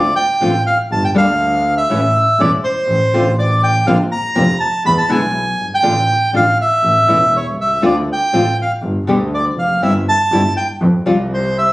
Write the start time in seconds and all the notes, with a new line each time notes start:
Already playing: D2 D5
0.16 G5
0.41 A1 D3 A3 C4 F4
0.67 F5
0.91 G1 A5
1.05 G5
1.15 D2 D3 G3 A#3 D4 A4 F5
1.77 E5
1.90 A1 E3 A3 C#4 E4
2.40 E1 E3 A3 C#4 E4 D5
2.64 C5
2.88 A1
3.13 A1 D3 A3 C4 F4
3.39 D5
3.63 G5
3.87 A#1 D3 A#3 C4 F4 F5
4.12 A#5
4.35 F1 D3 A#3 C4 F4
4.60 A5
4.86 E2 B5
4.98 A5
5.09 B1 B2 D3 G#3 B3 E4 G#5
5.60 G1
5.74 G5
5.83 A1 D3 A3 D4 F4
6.34 A1 D3 A3 D4 F4 F5
6.61 E5
6.84 A1
7.07 E1 E3 A3 C#4 E4
7.36 C#5
7.58 C2 E5
7.82 D2 D3 A3 C4 F4 D5
8.13 G5
8.33 A1 D3 A3 C4 F4
8.62 F5
8.82 G1
9.07 D2 B2 D3 G3 B3 G4
9.34 D5
9.57 F1 F5
9.82 G1 G3 C4 E4 E5
10.09 A5
10.32 G1 G3 C4 E4
10.57 G5
10.81 F2
11.06 C2 F3 G3 C4 F4
11.34 C5
11.58 E5